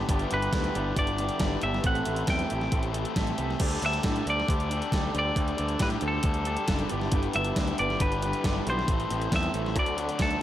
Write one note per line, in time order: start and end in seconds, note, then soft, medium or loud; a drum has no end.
0.00 0.10 G4 loud
0.00 8.85 G4 medium
0.00 1.82 B4 medium
0.00 3.56 E5 medium
0.00 1.82 D6 medium
0.07 0.24 G1 loud
0.07 0.29 G2 loud
0.07 0.30 D3 loud
0.07 0.29 G3 loud
0.07 0.29 B3 loud
0.07 0.32 D4 loud
0.07 0.30 E4 loud
0.07 0.33 G4 loud
0.07 0.30 B4 loud
0.07 0.31 D5 loud
0.07 kick loud
0.07 closed hi-hat loud
0.19 closed hi-hat soft
0.29 0.47 G1 medium
0.29 0.51 G2 medium
0.29 0.52 D3 medium
0.29 0.52 G3 medium
0.29 0.51 B3 medium
0.29 0.54 D4 medium
0.29 0.52 E4 medium
0.29 0.52 B4 medium
0.29 0.53 D5 medium
0.29 closed hi-hat medium
0.34 0.55 G4 medium
0.34 0.94 B4 medium
0.42 closed hi-hat soft
0.52 0.69 D2 medium
0.52 0.74 G2 medium
0.52 0.74 D3 medium
0.52 0.74 G3 medium
0.52 0.73 B3 medium
0.52 0.75 D4 loud
0.52 0.74 E4 medium
0.52 0.77 G4 loud
0.52 0.74 B4 medium
0.52 0.75 D5 medium
0.52 kick loud
0.52 snare loud
0.52 closed hi-hat loud
0.64 closed hi-hat soft
0.74 0.91 G1 medium
0.74 0.95 G2 loud
0.74 0.96 D3 medium
0.74 0.95 G3 medium
0.74 0.95 B3 loud
0.74 0.98 D4 medium
0.74 0.96 E4 loud
0.74 0.99 G4 loud
0.74 0.96 B4 loud
0.74 0.97 D5 loud
0.74 closed hi-hat medium
0.96 1.28 G1 medium
0.96 1.18 G2 medium
0.96 1.18 D3 medium
0.96 1.17 G3 medium
0.96 1.17 B3 medium
0.96 1.20 D4 loud
0.96 1.18 E4 medium
0.96 1.21 G4 loud
0.96 1.18 B4 medium
0.96 1.19 D5 medium
0.96 1.63 D5 medium
0.96 kick loud
0.96 closed hi-hat loud
1.07 closed hi-hat medium
1.18 1.39 G2 loud
1.18 1.40 D3 medium
1.18 1.38 G3 medium
1.18 1.39 B3 medium
1.18 1.41 D4 loud
1.18 1.39 E4 medium
1.18 1.42 G4 medium
1.18 1.40 B4 loud
1.18 1.40 D5 loud
1.18 closed hi-hat medium
1.29 closed hi-hat soft
1.38 1.56 G1 medium
1.38 1.61 G2 loud
1.38 1.61 D3 loud
1.38 1.61 G3 medium
1.38 1.61 B3 medium
1.38 1.61 E4 medium
1.38 1.62 B4 loud
1.38 1.62 D5 loud
1.38 kick loud
1.38 snare loud
1.38 closed hi-hat loud
1.42 1.63 D4 loud
1.42 1.64 G4 loud
1.61 1.79 G1 medium
1.61 1.83 G2 medium
1.61 1.83 D3 medium
1.61 1.82 G3 medium
1.61 1.82 B3 medium
1.61 1.84 D4 medium
1.61 1.83 E4 medium
1.61 1.85 G4 medium
1.61 1.83 B4 loud
1.61 1.84 D5 medium
1.61 1.86 E5 medium
1.61 closed hi-hat medium
1.74 snare soft
1.82 2.00 A1 loud
1.82 2.03 A2 medium
1.82 2.04 E3 loud
1.82 2.03 A3 loud
1.82 2.04 C4 loud
1.82 2.05 E4 loud
1.82 2.04 G4 loud
1.82 2.04 A4 loud
1.82 6.87 A4 medium
1.82 2.05 E5 loud
1.82 3.59 C6 medium
1.82 kick loud
1.82 closed hi-hat loud
1.87 2.30 F#5 loud
1.95 closed hi-hat soft
2.03 2.23 A1 medium
2.03 2.26 A2 medium
2.03 2.26 E3 medium
2.03 2.26 A3 medium
2.03 2.26 C4 loud
2.03 2.28 E4 medium
2.03 2.27 G4 loud
2.03 2.27 A4 loud
2.03 2.28 E5 medium
2.03 closed hi-hat medium
2.16 closed hi-hat medium
2.27 2.44 E2 loud
2.27 2.47 A2 loud
2.27 2.48 E3 medium
2.27 2.49 A3 medium
2.27 2.49 C4 medium
2.27 2.49 E4 medium
2.27 2.50 G4 loud
2.27 2.50 A4 medium
2.27 2.50 E5 loud
2.27 3.13 G5 medium
2.27 kick loud
2.27 snare loud
2.27 closed hi-hat loud
2.39 closed hi-hat medium
2.48 2.67 A1 loud
2.48 2.69 A2 medium
2.48 2.70 E3 medium
2.48 2.70 A3 medium
2.48 2.70 C4 medium
2.48 2.72 E4 loud
2.48 2.71 G4 loud
2.48 2.72 A4 loud
2.48 2.71 E5 loud
2.48 closed hi-hat medium
2.61 snare soft
2.71 3.04 A1 medium
2.71 2.92 A2 medium
2.71 2.92 E3 loud
2.71 2.93 A3 medium
2.71 2.92 C4 medium
2.71 2.93 E4 medium
2.71 2.94 G4 medium
2.71 2.95 A4 medium
2.71 2.94 E5 medium
2.71 kick loud
2.71 closed hi-hat loud
2.83 closed hi-hat medium
2.93 3.13 A2 medium
2.93 3.14 E3 medium
2.93 3.15 A3 medium
2.93 3.15 C4 medium
2.93 3.15 E4 medium
2.93 3.17 G4 medium
2.93 3.17 A4 medium
2.93 3.17 E5 medium
2.93 closed hi-hat medium
3.05 closed hi-hat medium
3.14 3.32 A1 medium
3.14 3.35 A2 loud
3.14 3.35 E3 loud
3.14 3.38 A3 medium
3.14 3.37 C4 medium
3.14 3.37 E4 loud
3.14 3.38 G4 medium
3.14 3.38 A4 loud
3.14 3.39 E5 loud
3.14 kick loud
3.14 snare loud
3.14 closed hi-hat loud
3.27 closed hi-hat medium
3.36 3.54 C2 medium
3.36 3.58 A2 medium
3.36 3.58 E3 medium
3.36 3.62 A3 medium
3.36 3.59 C4 medium
3.36 3.59 E4 medium
3.36 3.62 G4 loud
3.36 3.63 A4 medium
3.36 3.60 E5 loud
3.36 closed hi-hat medium
3.51 snare soft
3.59 3.76 D2 loud
3.59 3.82 D3 medium
3.59 3.83 G3 loud
3.59 3.82 D4 loud
3.59 3.83 G4 medium
3.59 3.83 A4 loud
3.59 6.87 D5 medium
3.59 8.83 D6 medium
3.59 kick loud
3.59 crash loud
3.64 3.84 D5 loud
3.71 closed hi-hat soft
3.82 3.98 D2 medium
3.82 4.03 D3 medium
3.82 4.04 G3 medium
3.82 4.04 D4 medium
3.82 4.05 G4 medium
3.82 4.05 A4 loud
3.82 4.05 D5 medium
3.82 4.29 E5 loud
3.82 closed hi-hat medium
3.93 closed hi-hat soft
4.03 4.20 A2 medium
4.03 4.24 D3 medium
4.03 4.26 G3 medium
4.03 4.26 D4 medium
4.03 4.27 G4 medium
4.03 4.27 A4 medium
4.03 4.28 D5 medium
4.03 kick loud
4.03 snare loud
4.03 closed hi-hat loud
4.16 closed hi-hat medium
4.25 4.42 D2 medium
4.25 4.45 D3 medium
4.25 4.47 G3 medium
4.25 4.47 D4 loud
4.25 4.48 G4 loud
4.25 4.47 A4 loud
4.25 4.49 D5 loud
4.25 closed hi-hat medium
4.30 5.18 D5 loud
4.40 snare soft
4.46 4.80 D2 loud
4.46 4.68 D3 medium
4.46 4.70 G3 medium
4.46 4.70 D4 medium
4.46 4.71 G4 medium
4.46 4.70 A4 medium
4.46 4.71 D5 medium
4.46 kick loud
4.46 closed hi-hat loud
4.60 closed hi-hat soft
4.69 4.90 D3 medium
4.69 4.91 G3 medium
4.69 4.91 D4 medium
4.69 4.92 G4 medium
4.69 4.92 A4 medium
4.69 4.93 D5 loud
4.69 closed hi-hat medium
4.82 closed hi-hat soft
4.91 5.08 D2 loud
4.91 5.12 D3 medium
4.91 5.13 G3 medium
4.91 5.14 D4 medium
4.91 5.14 G4 loud
4.91 5.14 A4 loud
4.91 5.15 D5 loud
4.91 kick loud
4.91 snare loud
4.91 closed hi-hat loud
5.13 5.30 D2 medium
5.13 5.32 D3 medium
5.13 5.34 G3 medium
5.13 5.35 D4 medium
5.13 5.35 G4 medium
5.13 5.35 A4 medium
5.13 5.36 D5 loud
5.13 closed hi-hat medium
5.19 5.84 D5 loud
5.33 5.52 D2 loud
5.33 5.55 D3 loud
5.33 5.56 G3 medium
5.33 5.57 D4 loud
5.33 5.57 G4 loud
5.33 5.57 A4 loud
5.33 5.58 D5 loud
5.33 kick loud
5.33 closed hi-hat loud
5.48 closed hi-hat soft
5.56 5.75 D2 medium
5.56 5.78 D3 medium
5.56 5.79 G3 medium
5.56 5.80 D4 medium
5.56 5.80 G4 loud
5.56 5.79 A4 medium
5.56 5.81 D5 loud
5.56 closed hi-hat medium
5.68 closed hi-hat soft
5.79 5.96 A2 medium
5.79 5.99 D3 medium
5.79 6.00 G3 loud
5.79 6.00 D4 medium
5.79 6.01 G4 medium
5.79 6.01 A4 medium
5.79 5.88 B4 medium
5.79 6.03 D5 medium
5.79 kick loud
5.79 snare loud
5.79 closed hi-hat loud
5.90 closed hi-hat medium
6.00 6.18 D2 medium
6.00 6.21 D3 loud
6.00 6.23 G3 loud
6.00 6.22 D4 loud
6.00 6.23 G4 loud
6.00 6.23 A4 loud
6.00 6.23 D5 loud
6.00 closed hi-hat medium
6.08 6.89 A4 medium
6.22 6.56 D2 medium
6.22 6.42 D3 medium
6.22 6.44 G3 medium
6.22 6.44 D4 medium
6.22 6.45 G4 medium
6.22 6.45 A4 medium
6.22 6.46 D5 medium
6.22 kick loud
6.22 closed hi-hat loud
6.34 closed hi-hat medium
6.44 6.64 D3 medium
6.44 6.66 G3 medium
6.44 6.66 D4 loud
6.44 6.67 G4 medium
6.44 6.66 A4 medium
6.44 6.67 D5 loud
6.44 closed hi-hat medium
6.57 closed hi-hat medium
6.66 6.84 F#1 medium
6.66 6.88 D3 loud
6.66 6.88 G3 medium
6.66 6.88 D4 medium
6.66 6.89 G4 loud
6.66 6.88 A4 loud
6.66 6.89 D5 loud
6.66 kick loud
6.66 snare loud
6.66 closed hi-hat loud
6.79 closed hi-hat medium
6.88 7.13 G2 loud
6.88 7.14 D3 loud
6.88 7.11 G3 loud
6.88 7.11 B3 loud
6.88 7.11 E4 loud
6.88 7.12 B4 loud
6.88 8.87 B4 medium
6.88 7.12 D5 loud
6.88 8.86 E5 medium
6.88 closed hi-hat medium
6.92 7.07 G1 medium
6.92 7.15 D4 loud
6.92 7.15 G4 loud
7.01 snare soft
7.12 7.28 G1 loud
7.12 7.34 G2 medium
7.12 7.34 D3 medium
7.12 7.33 G3 loud
7.12 7.33 B3 loud
7.12 7.33 E4 medium
7.12 7.34 B4 loud
7.12 7.34 D5 loud
7.12 kick loud
7.12 closed hi-hat loud
7.16 7.36 D4 loud
7.16 7.36 G4 loud
7.23 closed hi-hat soft
7.33 7.51 G1 medium
7.33 7.57 G2 medium
7.33 7.57 D3 medium
7.33 7.54 G3 medium
7.33 7.54 B3 medium
7.33 7.59 D4 medium
7.33 7.54 E4 loud
7.33 7.59 G4 loud
7.33 7.55 B4 loud
7.33 7.55 D5 medium
7.33 7.79 E5 loud
7.33 closed hi-hat medium
7.45 closed hi-hat soft
7.55 7.72 D2 medium
7.55 7.78 G2 loud
7.55 7.78 D3 loud
7.55 7.76 G3 medium
7.55 7.77 B3 medium
7.55 7.77 E4 medium
7.55 7.78 B4 medium
7.55 7.78 D5 loud
7.55 kick loud
7.55 snare loud
7.55 closed hi-hat loud
7.59 7.79 G3 loud
7.59 7.80 B3 loud
7.59 7.80 D4 loud
7.59 7.80 G4 loud
7.67 closed hi-hat medium
7.77 7.95 G1 medium
7.77 7.99 G2 medium
7.77 8.00 D3 loud
7.77 7.98 G3 loud
7.77 7.99 B3 loud
7.77 7.99 E4 loud
7.77 8.00 B4 loud
7.77 8.00 D5 loud
7.77 8.01 D5 loud
7.77 closed hi-hat medium
7.81 8.01 D4 loud
7.81 8.01 G4 loud
7.90 snare soft
7.99 8.32 G1 medium
7.99 8.22 G2 medium
7.99 8.23 D3 medium
7.99 8.19 G3 medium
7.99 8.20 B3 medium
7.99 8.25 D4 medium
7.99 8.21 E4 medium
7.99 8.26 G4 medium
7.99 8.69 B4 medium
7.99 8.22 B4 medium
7.99 8.22 D5 medium
7.99 kick loud
7.99 closed hi-hat loud
8.12 closed hi-hat soft
8.20 8.44 G2 medium
8.20 8.44 D3 medium
8.20 8.42 G3 medium
8.20 8.43 B3 medium
8.20 8.44 E4 medium
8.20 8.44 B4 loud
8.20 8.44 D5 loud
8.20 closed hi-hat medium
8.25 8.45 G3 medium
8.25 8.46 D4 medium
8.25 8.47 G4 loud
8.33 closed hi-hat soft
8.43 8.60 G1 medium
8.43 8.66 G2 loud
8.43 8.67 D3 medium
8.43 8.65 G3 loud
8.43 8.66 B3 loud
8.43 8.69 D4 loud
8.43 8.66 E4 loud
8.43 8.66 B4 medium
8.43 8.68 D5 loud
8.43 kick loud
8.43 snare loud
8.43 closed hi-hat loud
8.48 8.69 G4 loud
8.66 8.83 B1 loud
8.66 8.88 G2 medium
8.66 8.88 D3 medium
8.66 8.87 G3 medium
8.66 8.87 B3 medium
8.66 8.89 D4 medium
8.66 8.88 E4 medium
8.66 8.87 B4 medium
8.66 9.35 C5 medium
8.66 8.88 D5 medium
8.66 closed hi-hat medium
8.70 8.89 G4 medium
8.79 snare soft
8.87 9.04 A1 medium
8.87 9.08 A2 loud
8.87 9.09 E3 medium
8.87 9.10 G3 medium
8.87 9.11 C4 loud
8.87 9.10 E4 loud
8.87 10.42 A4 medium
8.87 9.11 C5 loud
8.87 9.76 E5 medium
8.87 9.75 G5 medium
8.87 9.75 C6 medium
8.87 kick loud
8.87 closed hi-hat loud
8.91 9.12 A4 loud
9.00 closed hi-hat soft
9.09 9.27 A1 medium
9.09 9.29 A2 medium
9.09 9.30 E3 medium
9.09 9.31 G3 medium
9.09 9.31 C4 medium
9.09 9.31 E4 medium
9.09 9.32 A4 medium
9.09 9.33 C5 medium
9.09 closed hi-hat medium
9.22 closed hi-hat soft
9.30 9.48 E2 loud
9.30 9.52 A2 medium
9.30 9.53 E3 medium
9.30 9.54 G3 medium
9.30 9.54 C4 medium
9.30 9.54 E4 medium
9.30 9.53 A4 loud
9.30 9.55 C5 loud
9.30 kick loud
9.30 snare loud
9.30 closed hi-hat loud
9.36 9.75 E5 loud
9.43 closed hi-hat soft
9.53 9.76 A1 medium
9.53 9.74 A2 loud
9.53 9.74 E3 loud
9.53 9.74 G3 loud
9.53 9.75 C4 loud
9.53 9.76 E4 loud
9.53 9.75 A4 medium
9.53 9.76 C5 loud
9.53 closed hi-hat medium
9.66 snare soft
9.74 10.08 D2 medium
9.74 9.94 D3 medium
9.74 9.96 F#3 loud
9.74 9.94 A3 medium
9.74 9.95 D4 medium
9.74 9.95 F#4 loud
9.74 9.96 A4 loud
9.74 10.42 D5 medium
9.74 10.42 F#5 medium
9.74 10.42 D6 medium
9.74 kick loud
9.74 closed hi-hat loud
9.79 10.40 D5 medium
9.86 closed hi-hat medium
9.95 10.17 D3 medium
9.95 10.20 F#3 loud
9.95 10.18 A3 medium
9.95 10.18 D4 medium
9.95 10.18 F#4 medium
9.95 10.19 A4 medium
9.95 closed hi-hat medium
10.09 closed hi-hat soft
10.18 10.36 D2 medium
10.18 10.37 D3 medium
10.18 10.42 F#3 loud
10.18 10.39 A3 medium
10.18 10.39 D4 loud
10.18 10.39 F#4 medium
10.18 10.40 A4 loud
10.18 10.42 A4 medium
10.18 kick loud
10.18 snare loud
10.18 closed hi-hat loud
10.31 closed hi-hat soft
10.39 10.42 D3 medium